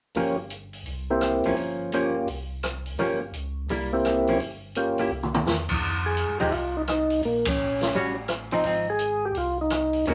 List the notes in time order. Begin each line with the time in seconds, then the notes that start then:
0.15 G1 F3 A#3 C#4 F4 G4, open hi-hat
0.50 closed hi-hat
0.73 open hi-hat
0.86 C2, open hi-hat
1.10 A#3 C4 E4 G4
1.21 cross-stick, closed hi-hat
1.44 C2 F3 A#3 C#4, open hi-hat
1.57 G1, open hi-hat
1.92 F3 A#3 C#4 F4 G4, closed hi-hat
2.28 C2, open hi-hat
2.63 cross-stick, closed hi-hat
2.86 open hi-hat
2.98 G1 F3 A#3 C#4 F4 G4, open hi-hat
3.34 C#2, closed hi-hat
3.69 C2 G3 A#3 E4, open hi-hat
3.93 A#3 C4 E4 G4
4.05 cross-stick, closed hi-hat
4.27 F3 A#3 C#4, open hi-hat
4.40 G1, open hi-hat
4.75 A#3 C#4 F4 G4, closed hi-hat
4.98 A#3 E4 G4, open hi-hat
5.10 C2
5.23 mid tom
5.34 mid tom
5.46 E2, snare
5.69 kick, crash
5.80 F2
6.06 G#4
6.17 closed hi-hat
6.28 G2
6.40 D#2 F3 G#3 D#4 G4, open hi-hat
6.51 C2 E4 F4, open hi-hat
6.77 D#4
6.87 D#4, cross-stick, closed hi-hat
7.10 open hi-hat
7.23 A#1 A#3, open hi-hat
7.45 C#4, kick, ride
7.81 snare, open hi-hat
7.93 A1 G3 C#4 F#4, open hi-hat
8.28 cross-stick, closed hi-hat
8.51 F3 C4 D#4, open hi-hat
8.64 G#1 F3 C4 D#4, open hi-hat
8.90 G#4
8.99 closed hi-hat
9.25 G4
9.35 C2 F4, open hi-hat
9.61 D#4
9.70 cross-stick, closed hi-hat
9.74 D#4
9.93 open hi-hat
10.05 D#2 D#3 A#3 C#4 F#4, open hi-hat
10.10 A#3